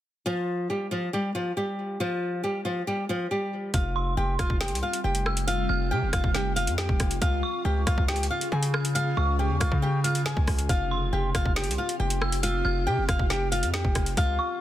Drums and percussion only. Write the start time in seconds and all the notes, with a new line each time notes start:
3.74 kick, closed hi-hat
4.39 kick, cross-stick, closed hi-hat
4.50 kick
4.61 snare, closed hi-hat
4.68 closed hi-hat
4.75 closed hi-hat
4.93 closed hi-hat
5.15 closed hi-hat
5.26 cross-stick
5.37 closed hi-hat
5.48 closed hi-hat
6.13 kick, cross-stick, closed hi-hat
6.24 kick
6.35 snare
6.57 closed hi-hat
6.67 closed hi-hat
6.78 snare
6.89 kick
7.00 kick, cross-stick, closed hi-hat
7.11 closed hi-hat
7.22 kick, closed hi-hat
7.87 kick, cross-stick, closed hi-hat
7.98 kick
8.08 snare, closed hi-hat
8.16 closed hi-hat
8.23 closed hi-hat
8.41 closed hi-hat
8.63 closed hi-hat
8.74 cross-stick
8.85 closed hi-hat
8.96 closed hi-hat
9.61 kick, cross-stick, closed hi-hat
9.72 kick
10.04 closed hi-hat
10.15 closed hi-hat
10.26 snare
10.37 kick
10.47 kick, cross-stick, open hi-hat
10.59 closed hi-hat
10.69 kick, closed hi-hat
11.35 kick, cross-stick, closed hi-hat
11.45 kick
11.56 snare, closed hi-hat
11.64 closed hi-hat
11.71 closed hi-hat
11.89 closed hi-hat
12.10 closed hi-hat
12.22 cross-stick
12.32 closed hi-hat
12.43 closed hi-hat
13.09 kick, cross-stick, closed hi-hat
13.19 kick
13.30 snare
13.52 closed hi-hat
13.63 closed hi-hat
13.74 snare
13.85 kick
13.95 kick, cross-stick, closed hi-hat
14.06 closed hi-hat
14.17 kick, closed hi-hat